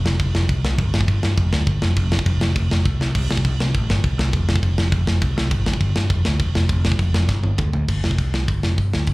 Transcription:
0.04 F1, snare
0.20 F1, kick, crash
0.34 F1, snare
0.49 C2, kick, crash
0.64 C2, snare
0.78 G1, kick, crash
0.94 G1, snare
1.01 kick
1.08 G1, kick, crash
1.23 G2, snare
1.37 F1, kick, crash
1.53 D2, snare
1.67 G1, kick, crash
1.82 F1, snare
1.96 F1, kick, crash
2.12 snare
2.19 kick
2.26 F1, kick, crash
2.41 F1, snare
2.56 F1, kick, crash
2.70 F1, snare
2.85 C2, kick, crash
3.00 C2, snare
3.15 C2, kick, crash
3.29 C2, snare
3.37 kick
3.45 C2, kick, crash
3.59 C3, snare
3.74 A1, kick, crash
3.89 G1, snare
4.04 C2, kick, crash
4.18 C2, snare
4.33 F1, kick, crash
4.49 snare
4.56 kick
4.63 F1, kick, crash
4.78 F1, snare
4.92 F1, kick, crash
5.07 F1, snare
5.22 C2, kick, crash
5.36 C2, snare
5.51 G1, kick, crash
5.66 G1, snare
5.73 kick
5.81 G1, kick, crash
5.96 G2, snare
6.10 F1, kick, crash
6.25 D2, snare
6.40 E1, kick, crash
6.54 F1, snare
6.69 F1, kick, crash
6.85 snare
6.92 kick
6.99 F1, kick, crash
7.14 F1, snare
7.29 G1, kick, snare
7.43 G1, high tom
7.58 D2, kick, mid tom
7.73 D2, floor tom
7.88 G1, kick, crash
8.03 F1, snare
8.11 kick
8.18 C2, kick, open hi-hat
8.34 snare
8.48 G1, kick, open hi-hat
8.63 F1, snare
8.78 G1, kick, open hi-hat
8.93 D2, snare
9.07 G1, kick, open hi-hat

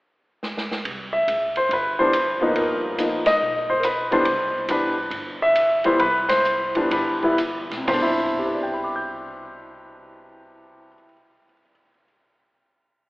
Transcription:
0.43 snare
0.57 snare
0.71 snare
0.85 C2, ride
1.13 E5
1.27 C#2, hi-hat pedal, ride
1.56 C5, ride
1.69 G1 B4, ride
1.99 E3 G3 B3 D4 C5
2.13 hi-hat pedal, ride
2.40 F#1 F3 A#3 B3 D#4
2.54 G1 A#4, ride
2.98 F3 A#3 B3 D#4, hi-hat pedal, ride
3.11 A#1
3.25 F1 D#5, snare, ride
3.40 B1
3.70 C5
3.80 A#4, hi-hat pedal, ride
3.85 B4
4.11 E3 G3 B3 D4 C5, ride
4.25 C2, ride
4.68 E3 G3 B3 D4 B4, hi-hat pedal, ride
5.10 G1, ride
5.42 E5
5.55 hi-hat pedal, ride
5.84 E3 G3 B3 E4 C5, ride
5.98 C2 B4, ride
6.29 C5, snare, ride
6.44 hi-hat pedal
6.75 E3 G3 B3 D4, ride
6.91 G1 B4, ride
7.23 E3 G3 B3 E4, kick
7.38 hi-hat pedal, ride
7.70 B1, snare, ride
7.77 C3
7.85 C2 B2 C5, kick, floor tom, open hi-hat
7.94 D4
8.02 E4
8.39 G4
8.46 B4
8.54 D5
8.63 G5
8.74 B5
8.84 D6
8.96 G6

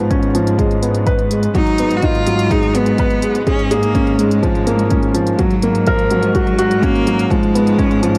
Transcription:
Already playing: G#2 F3 B3
0.10 C#4, kick, closed hi-hat
0.23 closed hi-hat
0.35 F3, closed hi-hat
0.47 closed hi-hat
0.59 G#3, kick, closed hi-hat
0.71 closed hi-hat
0.82 B3, closed hi-hat
0.95 closed hi-hat
1.07 B4, kick, closed hi-hat
1.19 closed hi-hat
1.31 G#3, closed hi-hat
1.43 closed hi-hat
1.55 G#2 F#3 D#4, kick, closed hi-hat
1.67 closed hi-hat
1.78 B3, closed hi-hat
1.91 closed hi-hat
1.97 F#4
2.02 D#4 F4, kick, closed hi-hat
2.15 closed hi-hat
2.27 F#3, closed hi-hat
2.39 closed hi-hat
2.51 G#3 D#4, kick, closed hi-hat
2.63 closed hi-hat
2.75 B3, closed hi-hat
2.86 closed hi-hat
2.98 B4, kick, closed hi-hat
3.10 closed hi-hat
3.22 G#3, closed hi-hat
3.35 closed hi-hat
3.47 G#2 C#4 G#4, kick, closed hi-hat
3.59 closed hi-hat
3.71 A#3 G#4, closed hi-hat
3.83 closed hi-hat
3.95 C#4, kick, closed hi-hat
4.07 closed hi-hat
4.19 G#3, closed hi-hat
4.31 closed hi-hat
4.43 F3, kick, closed hi-hat
4.55 closed hi-hat
4.67 A#3, closed hi-hat
4.79 closed hi-hat
4.90 C#4, kick, closed hi-hat
5.03 closed hi-hat
5.14 F3, closed hi-hat
5.27 closed hi-hat
5.33 G#3
5.39 G#2 F#3, kick, closed hi-hat
5.50 closed hi-hat
5.62 A#3, closed hi-hat
5.75 closed hi-hat
5.87 F3 A#4, kick, closed hi-hat
5.99 closed hi-hat
6.11 F#3, closed hi-hat
6.23 closed hi-hat
6.35 F#3 F#4, kick, closed hi-hat
6.47 closed hi-hat
6.59 F#4, closed hi-hat
6.71 closed hi-hat
6.83 A#3 C#4, kick, closed hi-hat
6.95 closed hi-hat
7.07 F#3, closed hi-hat
7.19 closed hi-hat
7.30 G#2 F3 G#3, kick, closed hi-hat
7.43 closed hi-hat
7.55 B3, closed hi-hat
7.67 closed hi-hat
7.79 C#4, kick, closed hi-hat
7.91 closed hi-hat
8.03 F3, closed hi-hat
8.15 closed hi-hat

